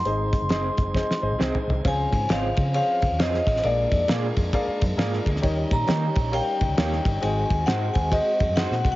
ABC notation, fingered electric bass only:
X:1
M:4/4
L:1/16
Q:"Swing" 1/4=134
K:Db
V:1 name="Fingered electric bass" clef=bass
A,,,3 G,,,3 G,,,3 z A,,, B,,, C,, z C,,2 | D,,2 A,,2 A,,,2 D,3 z D,, E,, F,,2 =A,,,2 | B,,,2 F,,2 B,,2 F,,2 z2 G,,2 A,,2 =D,,2 | E,,2 B,,2 E,2 B,,,3 z C,, D,, E,,2 =G,,,2 |
A,,,2 E,,2 A,,2 E,,3 z F,, G,,2 B,, C,,2 |]